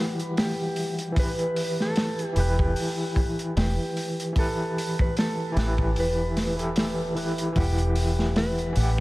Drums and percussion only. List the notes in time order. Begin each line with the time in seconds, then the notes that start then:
0.19 closed hi-hat
0.37 snare, open hi-hat
0.76 open hi-hat
0.99 closed hi-hat
1.16 kick, open hi-hat
1.39 closed hi-hat
1.56 open hi-hat
1.80 snare
1.96 snare, open hi-hat
2.19 closed hi-hat
2.36 open hi-hat
2.59 kick
2.76 open hi-hat
3.16 kick, open hi-hat
3.39 closed hi-hat
3.57 snare, open hi-hat
3.97 open hi-hat
4.20 closed hi-hat
4.36 kick, open hi-hat
4.78 open hi-hat
4.99 kick
5.17 snare, open hi-hat
5.57 snare, open hi-hat
5.78 kick
5.96 open hi-hat
6.37 snare, open hi-hat
6.59 closed hi-hat
6.76 snare, open hi-hat
7.17 open hi-hat
7.38 closed hi-hat
7.56 kick, open hi-hat
7.78 closed hi-hat
7.96 open hi-hat
8.19 snare
8.36 snare, open hi-hat
8.58 closed hi-hat
8.76 open hi-hat